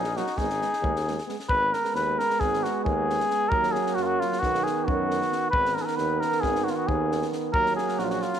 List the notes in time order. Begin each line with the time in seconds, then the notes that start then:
Already playing: A#1 D#4 G#4
0.04 snare
0.15 F#3 A#3 D#4 F#4, snare
0.27 snare
0.36 G#1 G#3 B3 D#4 G#4, kick, snare
0.50 snare
0.61 G#3 B3, snare
0.73 snare
0.82 D#2 G#3 B3, kick
0.96 snare
1.05 G#3 B3, snare
1.19 snare
1.27 G#3 B3, snare
1.40 snare
1.49 G#1 G#3 B3 B4, kick
1.73 A#4, snare
1.85 snare
1.94 D#2 B4, snare
2.19 A#4, snare
2.31 snare
2.40 G#1 G#4, kick, snare
2.54 snare
2.63 F#4, snare
2.84 D#2 G#4, kick
3.10 snare
3.21 snare
3.31 snare
3.49 D#2 F#3 A#3 A#4, kick
3.63 snare
3.72 G#4, snare
3.87 snare
3.95 F#2 F#4, snare
4.02 F4 F#4
4.20 F4, snare
4.33 snare
4.39 B1 D#3 B3 F#4, kick, snare
4.55 snare
4.63 G#4, snare
4.85 F#2 F#4, kick
5.11 snare
5.22 snare
5.33 snare
5.51 G#1 D#3 B3 B4, kick
5.66 snare
5.74 A#4, snare
5.82 G#4 A#4
5.88 snare
5.96 D#2 B4, snare
6.20 A#4, snare
6.32 snare
6.41 G#1 G#4, kick, snare
6.56 snare
6.64 F#4, snare
6.70 F4
6.76 F#4
6.88 D#2 G#4, kick
7.12 snare
7.23 snare
7.33 snare
7.53 D#2 F#3 A#3 A#4, kick
7.66 snare
7.76 G#4, snare
7.89 snare
7.98 A#1 F#4, snare
8.04 F4
8.10 F#4, snare
8.22 F4, snare
8.34 snare